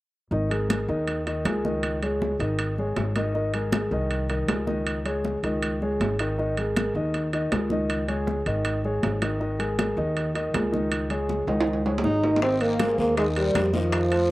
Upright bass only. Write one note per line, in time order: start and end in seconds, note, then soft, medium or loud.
0.31 0.84 G#1 medium
0.88 1.42 D#2 medium
1.45 2.34 C#2 medium
2.39 2.93 G#1 medium
2.97 3.86 G#1 medium
3.91 4.45 C2 medium
4.48 5.38 C#2 medium
5.43 5.96 C#2 medium
6.00 6.89 G#1 medium
6.95 7.48 D#2 medium
7.52 8.40 C#2 medium
8.46 8.99 G#1 medium
9.03 9.92 G#1 medium
9.97 10.50 D#2 medium
10.54 11.42 C#2 medium
11.47 12.00 C#2 medium
12.04 12.92 G#1 medium
12.98 13.51 D#2 medium
13.55 14.31 F2 medium